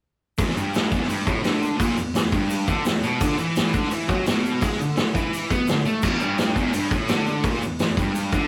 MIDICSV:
0, 0, Header, 1, 3, 480
1, 0, Start_track
1, 0, Tempo, 353149
1, 518, Time_signature, 4, 2, 24, 8
1, 11519, End_track
2, 0, Start_track
2, 0, Title_t, "Distorted electric guitar"
2, 0, Program_c, 0, 30
2, 521, Note_on_c, 0, 40, 109
2, 750, Note_off_c, 0, 40, 0
2, 756, Note_on_c, 0, 43, 105
2, 1230, Note_off_c, 0, 43, 0
2, 1243, Note_on_c, 0, 40, 97
2, 1463, Note_off_c, 0, 40, 0
2, 1469, Note_on_c, 0, 43, 104
2, 1706, Note_off_c, 0, 43, 0
2, 1710, Note_on_c, 0, 45, 93
2, 1932, Note_off_c, 0, 45, 0
2, 1938, Note_on_c, 0, 50, 105
2, 2406, Note_off_c, 0, 50, 0
2, 2411, Note_on_c, 0, 46, 115
2, 2657, Note_off_c, 0, 46, 0
2, 2660, Note_on_c, 0, 40, 62
2, 2861, Note_off_c, 0, 40, 0
2, 2910, Note_on_c, 0, 40, 69
2, 3106, Note_off_c, 0, 40, 0
2, 3154, Note_on_c, 0, 43, 100
2, 3623, Note_on_c, 0, 50, 108
2, 3628, Note_off_c, 0, 43, 0
2, 3863, Note_off_c, 0, 50, 0
2, 3872, Note_on_c, 0, 40, 76
2, 4067, Note_off_c, 0, 40, 0
2, 4113, Note_on_c, 0, 47, 95
2, 4348, Note_off_c, 0, 47, 0
2, 4370, Note_on_c, 0, 50, 111
2, 4595, Note_off_c, 0, 50, 0
2, 4600, Note_on_c, 0, 52, 95
2, 5071, Note_off_c, 0, 52, 0
2, 5085, Note_on_c, 0, 50, 105
2, 5313, Note_off_c, 0, 50, 0
2, 5335, Note_on_c, 0, 52, 119
2, 5558, Note_off_c, 0, 52, 0
2, 5567, Note_on_c, 0, 54, 97
2, 5794, Note_off_c, 0, 54, 0
2, 5805, Note_on_c, 0, 47, 112
2, 6273, Note_off_c, 0, 47, 0
2, 6273, Note_on_c, 0, 56, 110
2, 6507, Note_off_c, 0, 56, 0
2, 6519, Note_on_c, 0, 50, 70
2, 6709, Note_off_c, 0, 50, 0
2, 6738, Note_on_c, 0, 50, 69
2, 6939, Note_off_c, 0, 50, 0
2, 6983, Note_on_c, 0, 52, 99
2, 7462, Note_off_c, 0, 52, 0
2, 7482, Note_on_c, 0, 59, 98
2, 7711, Note_off_c, 0, 59, 0
2, 7713, Note_on_c, 0, 50, 73
2, 7906, Note_off_c, 0, 50, 0
2, 7955, Note_on_c, 0, 57, 102
2, 8188, Note_off_c, 0, 57, 0
2, 8193, Note_on_c, 0, 40, 117
2, 8427, Note_off_c, 0, 40, 0
2, 8452, Note_on_c, 0, 43, 94
2, 8914, Note_off_c, 0, 43, 0
2, 8919, Note_on_c, 0, 40, 97
2, 9150, Note_off_c, 0, 40, 0
2, 9163, Note_on_c, 0, 43, 117
2, 9392, Note_off_c, 0, 43, 0
2, 9398, Note_on_c, 0, 45, 105
2, 9637, Note_off_c, 0, 45, 0
2, 9637, Note_on_c, 0, 50, 110
2, 10110, Note_off_c, 0, 50, 0
2, 10123, Note_on_c, 0, 46, 117
2, 10353, Note_off_c, 0, 46, 0
2, 10366, Note_on_c, 0, 40, 63
2, 10554, Note_off_c, 0, 40, 0
2, 10601, Note_on_c, 0, 40, 70
2, 10792, Note_off_c, 0, 40, 0
2, 10840, Note_on_c, 0, 43, 105
2, 11313, Note_off_c, 0, 43, 0
2, 11316, Note_on_c, 0, 50, 98
2, 11519, Note_off_c, 0, 50, 0
2, 11519, End_track
3, 0, Start_track
3, 0, Title_t, "Drums"
3, 515, Note_on_c, 9, 82, 89
3, 524, Note_on_c, 9, 36, 109
3, 530, Note_on_c, 9, 46, 62
3, 651, Note_off_c, 9, 82, 0
3, 660, Note_off_c, 9, 36, 0
3, 665, Note_off_c, 9, 46, 0
3, 675, Note_on_c, 9, 38, 34
3, 779, Note_on_c, 9, 82, 78
3, 810, Note_off_c, 9, 38, 0
3, 915, Note_off_c, 9, 82, 0
3, 1005, Note_on_c, 9, 82, 101
3, 1018, Note_on_c, 9, 46, 59
3, 1035, Note_on_c, 9, 38, 114
3, 1141, Note_off_c, 9, 82, 0
3, 1154, Note_off_c, 9, 46, 0
3, 1171, Note_off_c, 9, 38, 0
3, 1238, Note_on_c, 9, 82, 76
3, 1247, Note_on_c, 9, 36, 83
3, 1374, Note_off_c, 9, 82, 0
3, 1383, Note_off_c, 9, 36, 0
3, 1395, Note_on_c, 9, 38, 34
3, 1483, Note_on_c, 9, 82, 104
3, 1492, Note_on_c, 9, 46, 59
3, 1530, Note_off_c, 9, 38, 0
3, 1619, Note_off_c, 9, 82, 0
3, 1628, Note_off_c, 9, 46, 0
3, 1725, Note_on_c, 9, 82, 76
3, 1726, Note_on_c, 9, 36, 90
3, 1861, Note_off_c, 9, 36, 0
3, 1861, Note_off_c, 9, 82, 0
3, 1956, Note_on_c, 9, 46, 61
3, 1967, Note_on_c, 9, 82, 93
3, 1972, Note_on_c, 9, 38, 97
3, 2092, Note_off_c, 9, 46, 0
3, 2103, Note_off_c, 9, 82, 0
3, 2108, Note_off_c, 9, 38, 0
3, 2208, Note_on_c, 9, 82, 72
3, 2344, Note_off_c, 9, 82, 0
3, 2443, Note_on_c, 9, 36, 112
3, 2447, Note_on_c, 9, 82, 98
3, 2450, Note_on_c, 9, 46, 66
3, 2578, Note_on_c, 9, 38, 33
3, 2579, Note_off_c, 9, 36, 0
3, 2583, Note_off_c, 9, 82, 0
3, 2586, Note_off_c, 9, 46, 0
3, 2681, Note_on_c, 9, 82, 82
3, 2714, Note_off_c, 9, 38, 0
3, 2817, Note_off_c, 9, 82, 0
3, 2919, Note_on_c, 9, 46, 63
3, 2925, Note_on_c, 9, 82, 106
3, 2935, Note_on_c, 9, 38, 116
3, 3055, Note_off_c, 9, 46, 0
3, 3061, Note_off_c, 9, 82, 0
3, 3071, Note_off_c, 9, 38, 0
3, 3153, Note_on_c, 9, 82, 76
3, 3159, Note_on_c, 9, 36, 84
3, 3289, Note_off_c, 9, 82, 0
3, 3295, Note_off_c, 9, 36, 0
3, 3393, Note_on_c, 9, 82, 102
3, 3405, Note_on_c, 9, 46, 54
3, 3529, Note_off_c, 9, 82, 0
3, 3541, Note_off_c, 9, 46, 0
3, 3639, Note_on_c, 9, 82, 84
3, 3641, Note_on_c, 9, 36, 81
3, 3774, Note_off_c, 9, 82, 0
3, 3777, Note_off_c, 9, 36, 0
3, 3876, Note_on_c, 9, 82, 109
3, 3879, Note_on_c, 9, 46, 58
3, 3895, Note_on_c, 9, 38, 101
3, 4012, Note_off_c, 9, 82, 0
3, 4015, Note_off_c, 9, 46, 0
3, 4031, Note_off_c, 9, 38, 0
3, 4122, Note_on_c, 9, 82, 75
3, 4258, Note_off_c, 9, 82, 0
3, 4359, Note_on_c, 9, 82, 109
3, 4363, Note_on_c, 9, 36, 110
3, 4363, Note_on_c, 9, 46, 60
3, 4495, Note_off_c, 9, 82, 0
3, 4499, Note_off_c, 9, 36, 0
3, 4499, Note_off_c, 9, 46, 0
3, 4501, Note_on_c, 9, 38, 30
3, 4596, Note_on_c, 9, 82, 79
3, 4637, Note_off_c, 9, 38, 0
3, 4732, Note_off_c, 9, 82, 0
3, 4836, Note_on_c, 9, 82, 92
3, 4838, Note_on_c, 9, 46, 60
3, 4854, Note_on_c, 9, 38, 106
3, 4972, Note_off_c, 9, 82, 0
3, 4974, Note_off_c, 9, 46, 0
3, 4990, Note_off_c, 9, 38, 0
3, 5075, Note_on_c, 9, 82, 81
3, 5084, Note_on_c, 9, 36, 81
3, 5211, Note_off_c, 9, 82, 0
3, 5213, Note_on_c, 9, 38, 29
3, 5219, Note_off_c, 9, 36, 0
3, 5311, Note_on_c, 9, 82, 97
3, 5314, Note_on_c, 9, 46, 54
3, 5349, Note_off_c, 9, 38, 0
3, 5447, Note_off_c, 9, 82, 0
3, 5450, Note_off_c, 9, 46, 0
3, 5552, Note_on_c, 9, 82, 85
3, 5558, Note_on_c, 9, 36, 90
3, 5688, Note_off_c, 9, 82, 0
3, 5694, Note_off_c, 9, 36, 0
3, 5794, Note_on_c, 9, 46, 61
3, 5795, Note_on_c, 9, 82, 99
3, 5810, Note_on_c, 9, 38, 109
3, 5930, Note_off_c, 9, 46, 0
3, 5931, Note_off_c, 9, 82, 0
3, 5946, Note_off_c, 9, 38, 0
3, 6055, Note_on_c, 9, 82, 74
3, 6191, Note_off_c, 9, 82, 0
3, 6267, Note_on_c, 9, 46, 62
3, 6274, Note_on_c, 9, 82, 98
3, 6281, Note_on_c, 9, 36, 105
3, 6403, Note_off_c, 9, 46, 0
3, 6410, Note_off_c, 9, 82, 0
3, 6416, Note_on_c, 9, 38, 30
3, 6417, Note_off_c, 9, 36, 0
3, 6538, Note_on_c, 9, 82, 79
3, 6551, Note_off_c, 9, 38, 0
3, 6674, Note_off_c, 9, 82, 0
3, 6745, Note_on_c, 9, 46, 60
3, 6761, Note_on_c, 9, 38, 105
3, 6763, Note_on_c, 9, 82, 88
3, 6881, Note_off_c, 9, 46, 0
3, 6897, Note_off_c, 9, 38, 0
3, 6898, Note_off_c, 9, 82, 0
3, 6999, Note_on_c, 9, 36, 86
3, 7014, Note_on_c, 9, 82, 74
3, 7135, Note_off_c, 9, 36, 0
3, 7150, Note_off_c, 9, 82, 0
3, 7242, Note_on_c, 9, 46, 54
3, 7253, Note_on_c, 9, 82, 97
3, 7378, Note_off_c, 9, 46, 0
3, 7389, Note_off_c, 9, 82, 0
3, 7483, Note_on_c, 9, 36, 91
3, 7484, Note_on_c, 9, 82, 82
3, 7619, Note_off_c, 9, 36, 0
3, 7620, Note_off_c, 9, 82, 0
3, 7711, Note_on_c, 9, 82, 89
3, 7722, Note_on_c, 9, 46, 54
3, 7739, Note_on_c, 9, 38, 102
3, 7847, Note_off_c, 9, 82, 0
3, 7858, Note_off_c, 9, 46, 0
3, 7875, Note_off_c, 9, 38, 0
3, 7954, Note_on_c, 9, 82, 69
3, 8090, Note_off_c, 9, 82, 0
3, 8182, Note_on_c, 9, 82, 82
3, 8195, Note_on_c, 9, 49, 104
3, 8199, Note_on_c, 9, 36, 102
3, 8317, Note_off_c, 9, 82, 0
3, 8331, Note_off_c, 9, 49, 0
3, 8334, Note_off_c, 9, 36, 0
3, 8338, Note_on_c, 9, 38, 32
3, 8424, Note_on_c, 9, 82, 77
3, 8474, Note_off_c, 9, 38, 0
3, 8560, Note_off_c, 9, 82, 0
3, 8665, Note_on_c, 9, 46, 55
3, 8677, Note_on_c, 9, 82, 93
3, 8682, Note_on_c, 9, 38, 106
3, 8801, Note_off_c, 9, 46, 0
3, 8813, Note_off_c, 9, 82, 0
3, 8818, Note_off_c, 9, 38, 0
3, 8914, Note_on_c, 9, 36, 80
3, 8921, Note_on_c, 9, 82, 65
3, 9047, Note_on_c, 9, 38, 30
3, 9050, Note_off_c, 9, 36, 0
3, 9057, Note_off_c, 9, 82, 0
3, 9149, Note_on_c, 9, 82, 95
3, 9153, Note_on_c, 9, 46, 62
3, 9183, Note_off_c, 9, 38, 0
3, 9285, Note_off_c, 9, 82, 0
3, 9289, Note_off_c, 9, 46, 0
3, 9395, Note_on_c, 9, 36, 88
3, 9396, Note_on_c, 9, 82, 71
3, 9530, Note_off_c, 9, 36, 0
3, 9532, Note_off_c, 9, 82, 0
3, 9627, Note_on_c, 9, 46, 57
3, 9629, Note_on_c, 9, 82, 90
3, 9643, Note_on_c, 9, 38, 114
3, 9762, Note_off_c, 9, 46, 0
3, 9765, Note_off_c, 9, 82, 0
3, 9779, Note_off_c, 9, 38, 0
3, 9873, Note_on_c, 9, 82, 66
3, 10009, Note_off_c, 9, 82, 0
3, 10106, Note_on_c, 9, 46, 63
3, 10111, Note_on_c, 9, 36, 115
3, 10112, Note_on_c, 9, 82, 90
3, 10241, Note_off_c, 9, 46, 0
3, 10247, Note_off_c, 9, 36, 0
3, 10248, Note_off_c, 9, 82, 0
3, 10249, Note_on_c, 9, 38, 31
3, 10359, Note_on_c, 9, 82, 74
3, 10385, Note_off_c, 9, 38, 0
3, 10495, Note_off_c, 9, 82, 0
3, 10587, Note_on_c, 9, 46, 58
3, 10596, Note_on_c, 9, 82, 96
3, 10604, Note_on_c, 9, 38, 99
3, 10723, Note_off_c, 9, 46, 0
3, 10732, Note_off_c, 9, 82, 0
3, 10740, Note_off_c, 9, 38, 0
3, 10835, Note_on_c, 9, 36, 87
3, 10849, Note_on_c, 9, 82, 69
3, 10971, Note_off_c, 9, 36, 0
3, 10985, Note_off_c, 9, 82, 0
3, 11075, Note_on_c, 9, 46, 55
3, 11078, Note_on_c, 9, 82, 98
3, 11211, Note_off_c, 9, 46, 0
3, 11214, Note_off_c, 9, 82, 0
3, 11313, Note_on_c, 9, 82, 80
3, 11316, Note_on_c, 9, 36, 92
3, 11449, Note_off_c, 9, 82, 0
3, 11452, Note_off_c, 9, 36, 0
3, 11519, End_track
0, 0, End_of_file